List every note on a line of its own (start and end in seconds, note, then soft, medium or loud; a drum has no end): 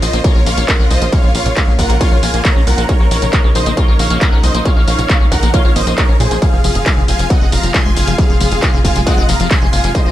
0.00 0.10 A#1 loud
0.00 6.38 C#3 medium
0.00 10.12 F3 medium
0.00 6.38 A#3 medium
0.00 2.86 F4 loud
0.00 0.06 F4 loud
0.00 0.21 C5 medium
0.00 0.21 D#5 medium
0.00 open hi-hat medium
0.00 tambourine medium
0.13 0.21 A#1 medium
0.13 0.19 A#3 medium
0.13 closed hi-hat medium
0.13 tambourine soft
0.24 0.33 F4 medium
0.24 0.43 A#4 medium
0.24 0.43 C#5 medium
0.24 kick loud
0.24 closed hi-hat medium
0.24 tambourine soft
0.35 0.43 A#1 medium
0.35 0.41 F4 loud
0.46 0.54 A#1 loud
0.46 0.52 A#3 medium
0.46 0.65 C#5 medium
0.46 0.65 F5 medium
0.46 open hi-hat loud
0.46 tambourine medium
0.57 0.65 A#1 medium
0.57 0.66 A#3 medium
0.57 closed hi-hat medium
0.57 tambourine soft
0.68 0.77 A#3 medium
0.68 0.87 A#4 medium
0.68 0.87 F#5 medium
0.68 kick loud
0.68 clap loud
0.68 closed hi-hat medium
0.68 tambourine soft
0.79 0.87 A#1 medium
0.79 0.85 C#4 loud
0.90 0.98 C2 loud
0.90 1.09 C5 medium
0.90 1.09 D#5 loud
0.90 open hi-hat medium
0.90 tambourine medium
1.02 1.09 A#1 medium
1.02 1.07 A#3 medium
1.02 closed hi-hat medium
1.02 tambourine soft
1.12 1.18 A#3 loud
1.12 1.31 C#5 medium
1.12 1.31 F5 loud
1.12 kick loud
1.12 closed hi-hat medium
1.12 tambourine soft
1.24 1.32 A#1 medium
1.24 1.29 A#3 medium
1.35 1.43 A#1 loud
1.35 1.40 A#3 medium
1.35 1.72 C#5 medium
1.35 1.72 F5 loud
1.35 open hi-hat loud
1.35 tambourine medium
1.46 1.54 A#1 medium
1.46 1.49 A#2 medium
1.46 closed hi-hat medium
1.46 tambourine soft
1.57 1.65 A#3 medium
1.57 kick loud
1.57 clap loud
1.57 closed hi-hat medium
1.57 tambourine soft
1.68 1.76 A#1 medium
1.68 1.73 G#3 medium
1.79 1.87 A#1 loud
1.79 1.82 F4 loud
1.79 1.98 A#4 medium
1.79 1.98 F#5 medium
1.79 kick medium
1.79 open hi-hat medium
1.79 tambourine medium
1.90 1.98 A#1 medium
1.90 1.95 A#3 medium
1.90 closed hi-hat medium
1.90 tambourine soft
2.01 2.09 F4 medium
2.01 2.20 C#5 medium
2.01 2.20 F5 medium
2.01 kick loud
2.01 closed hi-hat medium
2.01 tambourine soft
2.12 2.20 A#1 medium
2.12 2.17 F4 loud
2.23 2.31 A#1 loud
2.23 2.28 A#3 medium
2.23 2.42 F5 medium
2.23 2.42 G#5 medium
2.23 open hi-hat loud
2.23 tambourine medium
2.34 2.42 A#1 loud
2.34 2.42 A#3 medium
2.34 closed hi-hat medium
2.34 tambourine soft
2.45 2.53 A#3 medium
2.45 2.64 C#5 medium
2.45 2.64 A#5 medium
2.45 kick loud
2.45 clap loud
2.45 closed hi-hat medium
2.45 tambourine soft
2.56 2.64 A#1 medium
2.56 2.61 C#4 loud
2.67 2.75 C2 loud
2.67 2.86 A#4 medium
2.67 2.86 F#5 medium
2.67 open hi-hat loud
2.67 tambourine medium
2.78 2.86 A#1 loud
2.78 2.84 A#3 medium
2.78 closed hi-hat medium
2.78 tambourine soft
2.89 2.95 A#3 loud
2.89 6.38 D#4 medium
2.89 3.08 A#4 medium
2.89 3.08 C#5 loud
2.89 kick loud
2.89 closed hi-hat medium
2.89 tambourine soft
3.00 3.08 A#1 medium
3.00 3.06 A#3 medium
3.11 3.19 A#1 loud
3.11 3.17 A#3 medium
3.11 3.49 A#4 medium
3.11 3.49 C#5 loud
3.11 open hi-hat loud
3.11 tambourine medium
3.22 3.30 A#1 medium
3.22 3.25 A#2 medium
3.22 closed hi-hat medium
3.22 tambourine soft
3.33 3.41 A#3 medium
3.33 kick loud
3.33 clap loud
3.33 closed hi-hat medium
3.33 tambourine soft
3.44 3.52 A#1 medium
3.44 3.50 G#3 medium
3.55 3.63 A#1 loud
3.55 3.58 F4 loud
3.55 3.74 C5 medium
3.55 3.74 D#5 loud
3.55 open hi-hat loud
3.55 tambourine medium
3.66 3.74 A#1 medium
3.66 3.72 A#3 medium
3.66 closed hi-hat medium
3.66 tambourine soft
3.77 3.86 F4 medium
3.77 3.96 A#4 medium
3.77 3.96 C#5 medium
3.77 kick loud
3.77 closed hi-hat medium
3.77 tambourine soft
3.88 3.96 A#1 medium
3.88 3.94 F4 loud
3.99 4.07 A#1 loud
3.99 4.05 A#3 medium
3.99 4.18 C#5 medium
3.99 4.18 F5 medium
3.99 open hi-hat loud
3.99 tambourine medium
4.10 4.18 A#1 medium
4.10 4.19 A#3 medium
4.10 closed hi-hat medium
4.10 tambourine soft
4.21 4.40 A#4 medium
4.21 4.40 F#5 medium
4.21 kick loud
4.21 clap loud
4.21 closed hi-hat medium
4.21 tambourine soft
4.32 4.40 A#1 medium
4.32 4.38 C#4 medium
4.43 4.51 C2 loud
4.43 4.62 C5 medium
4.43 4.62 D#5 medium
4.43 open hi-hat loud
4.43 tambourine medium
4.54 4.62 A#1 medium
4.54 4.60 A#3 medium
4.54 closed hi-hat medium
4.54 tambourine soft
4.65 4.71 A#3 loud
4.65 4.84 C#5 medium
4.65 4.84 F5 loud
4.65 kick loud
4.65 closed hi-hat medium
4.65 tambourine soft
4.76 4.84 A#1 medium
4.76 4.82 A#3 medium
4.88 4.95 A#1 loud
4.88 4.93 A#3 medium
4.88 5.25 C#5 medium
4.88 5.25 F5 loud
4.88 open hi-hat loud
4.88 tambourine medium
4.99 5.06 A#1 medium
4.99 5.02 A#2 medium
4.99 closed hi-hat medium
4.99 tambourine soft
5.10 5.18 A#3 medium
5.10 kick loud
5.10 clap loud
5.10 closed hi-hat medium
5.10 tambourine soft
5.21 5.28 A#1 medium
5.21 5.26 G#3 medium
5.32 5.39 A#1 loud
5.32 5.35 F4 loud
5.32 5.51 A#4 medium
5.32 5.51 F#5 medium
5.32 kick medium
5.32 open hi-hat loud
5.32 tambourine medium
5.43 5.51 A#1 medium
5.43 5.48 A#3 medium
5.43 closed hi-hat medium
5.43 tambourine soft
5.54 5.62 F4 medium
5.54 5.73 C#5 medium
5.54 5.73 F5 medium
5.54 kick loud
5.54 closed hi-hat medium
5.54 tambourine soft
5.65 5.73 A#1 medium
5.65 5.70 F4 loud
5.76 5.84 G#1 loud
5.76 5.81 A#3 medium
5.76 5.95 C5 medium
5.76 5.95 D#5 medium
5.76 open hi-hat loud
5.76 tambourine medium
5.87 5.95 A#1 medium
5.87 5.95 A#3 medium
5.87 closed hi-hat medium
5.87 tambourine soft
5.98 6.17 A#4 medium
5.98 6.17 C#5 loud
5.98 kick loud
5.98 clap loud
5.98 closed hi-hat medium
5.98 tambourine soft
6.09 6.17 A#1 medium
6.09 6.14 C#4 loud
6.20 6.28 A#2 loud
6.20 6.39 G#4 medium
6.20 6.39 C5 medium
6.20 open hi-hat medium
6.20 tambourine medium
6.31 6.39 A#1 loud
6.31 6.37 A#3 medium
6.31 closed hi-hat medium
6.31 tambourine soft
6.42 10.12 C3 medium
6.42 6.48 F3 loud
6.42 10.12 G#3 medium
6.42 10.12 F4 medium
6.42 6.61 G#4 medium
6.42 6.61 F5 loud
6.42 kick loud
6.42 closed hi-hat medium
6.42 tambourine soft
6.53 6.61 F1 medium
6.53 6.59 F3 medium
6.64 6.72 F1 loud
6.64 6.70 F3 medium
6.64 7.02 G#4 medium
6.64 7.02 F5 loud
6.64 open hi-hat loud
6.64 tambourine medium
6.75 6.83 F1 loud
6.75 6.78 F2 medium
6.75 closed hi-hat medium
6.75 tambourine soft
6.86 6.94 F3 medium
6.86 kick loud
6.86 clap loud
6.86 closed hi-hat medium
6.86 tambourine soft
6.97 7.05 F1 medium
6.97 7.03 D#3 medium
7.08 7.16 F1 loud
7.08 7.12 C4 loud
7.08 7.27 F5 medium
7.08 7.27 G#5 medium
7.08 open hi-hat medium
7.08 tambourine medium
7.19 7.27 F1 medium
7.19 7.25 F3 medium
7.19 closed hi-hat medium
7.19 tambourine soft
7.30 7.39 C4 medium
7.30 7.49 D#5 medium
7.30 7.49 F#5 medium
7.30 kick loud
7.30 closed hi-hat medium
7.30 tambourine soft
7.41 7.49 F1 medium
7.41 7.47 C4 loud
7.52 7.60 F1 loud
7.52 7.58 F3 medium
7.52 7.71 F5 medium
7.52 7.71 A#5 medium
7.52 open hi-hat loud
7.52 tambourine medium
7.63 7.71 F1 medium
7.63 7.72 F3 medium
7.63 closed hi-hat medium
7.63 tambourine soft
7.74 7.83 F3 medium
7.74 7.93 G#5 medium
7.74 7.93 C6 medium
7.74 kick loud
7.74 clap loud
7.74 closed hi-hat medium
7.74 tambourine soft
7.85 7.93 F1 medium
7.85 7.91 G#3 medium
7.96 8.04 F#1 loud
7.96 8.15 F5 medium
7.96 8.15 G#5 medium
7.96 open hi-hat medium
7.96 tambourine medium
8.07 8.15 F1 medium
8.07 8.13 F3 medium
8.07 closed hi-hat medium
8.07 tambourine soft
8.18 8.24 F3 loud
8.18 8.37 G#4 medium
8.18 8.37 F5 loud
8.18 kick loud
8.18 closed hi-hat medium
8.18 tambourine soft
8.29 8.37 F1 medium
8.29 8.35 F3 medium
8.40 8.48 F1 loud
8.40 8.46 F3 medium
8.40 8.78 G#4 medium
8.40 8.78 F5 loud
8.40 open hi-hat loud
8.40 tambourine medium
8.52 8.59 F1 medium
8.52 8.55 F2 medium
8.52 closed hi-hat medium
8.52 tambourine soft
8.62 8.71 F3 medium
8.62 kick loud
8.62 clap loud
8.62 closed hi-hat medium
8.62 tambourine soft
8.74 8.81 F1 medium
8.74 8.79 D#3 medium
8.85 8.92 F1 loud
8.85 8.88 C4 loud
8.85 9.04 F5 medium
8.85 9.04 G#5 medium
8.85 kick medium
8.85 open hi-hat medium
8.85 tambourine medium
8.96 9.04 F1 medium
8.96 9.01 F3 medium
8.96 closed hi-hat medium
8.96 tambourine soft
9.07 9.15 C4 medium
9.07 9.26 D#5 medium
9.07 9.26 F#5 medium
9.07 kick loud
9.07 closed hi-hat medium
9.07 tambourine soft
9.18 9.26 F1 medium
9.18 9.23 C4 loud
9.29 9.37 F1 loud
9.29 9.34 F3 medium
9.29 9.48 F5 medium
9.29 9.48 A#5 medium
9.29 open hi-hat loud
9.29 tambourine medium
9.40 9.48 F1 medium
9.40 9.48 F3 medium
9.40 closed hi-hat medium
9.40 tambourine soft
9.51 9.70 G#5 medium
9.51 9.70 C6 medium
9.51 kick loud
9.51 clap loud
9.51 closed hi-hat medium
9.51 tambourine soft
9.62 9.70 F1 medium
9.62 9.67 G#3 loud
9.73 9.81 F#1 medium
9.73 9.92 F5 medium
9.73 9.92 G#5 medium
9.73 open hi-hat medium
9.73 tambourine medium
9.84 9.92 F1 loud
9.84 9.89 F3 medium
9.84 closed hi-hat medium
9.84 tambourine soft
9.95 10.00 F3 loud
9.95 10.12 C5 medium
9.95 10.12 D#5 loud
9.95 kick loud
9.95 closed hi-hat medium
9.95 tambourine soft
10.06 10.12 F1 medium
10.06 10.12 F3 medium